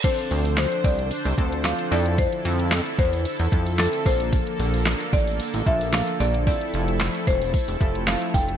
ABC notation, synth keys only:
X:1
M:4/4
L:1/16
Q:1/4=112
K:F
V:1 name="Synth keys"
[F,CDA]6 z4 [F,CDA]4 [F,CEA]2- | [F,CEA]4 z6 [F,CEA]4 [F,B,DA]2- | [F,B,DA]4 z6 [F,B,DA]4- [F,B,DA] z | [F,CEA]6 z4 [F,CEA]4- [F,CEA] z |]